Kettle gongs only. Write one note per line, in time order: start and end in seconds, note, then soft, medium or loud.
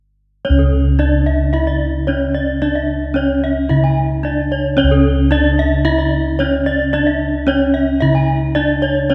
0.45 2.03 C#4 soft
0.50 3.68 C#2 medium
1.00 1.08 D4 soft
2.09 2.17 D4 soft
2.62 3.15 D4 medium
3.16 3.24 D4 soft
3.71 5.28 C#3 medium
4.24 4.32 D4 soft
4.79 6.36 C#4 medium
4.84 8.01 C#2 medium
5.32 5.40 D4 soft
6.40 6.48 D4 soft
6.93 7.47 D4 medium
7.48 7.56 D4 soft
8.02 9.15 C#3 medium
8.56 8.64 D4 soft
9.10 9.15 C#4 medium